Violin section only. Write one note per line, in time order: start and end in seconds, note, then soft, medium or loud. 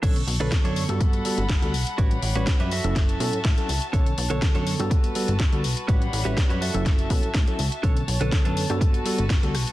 0.03 1.97 A4 medium
0.03 1.00 C#6 medium
1.01 2.70 F#5 medium
1.01 1.97 B5 medium
1.98 2.71 G3 medium
1.98 2.71 C#5 medium
1.98 2.71 B5 medium
2.72 3.92 F#4 medium
2.72 3.92 E5 medium
2.72 4.89 A5 medium
3.93 4.90 C#5 medium
4.91 5.88 F#4 medium
4.91 5.88 B4 medium
4.91 5.88 A5 medium
5.88 6.61 G3 medium
5.88 6.61 C#5 medium
5.88 6.61 F#5 medium
5.88 6.61 B5 medium
6.61 7.82 F#4 medium
6.61 7.82 E5 medium
6.61 9.72 A5 medium
7.84 8.80 C#5 medium
8.81 9.72 F#4 medium
8.81 9.72 B4 medium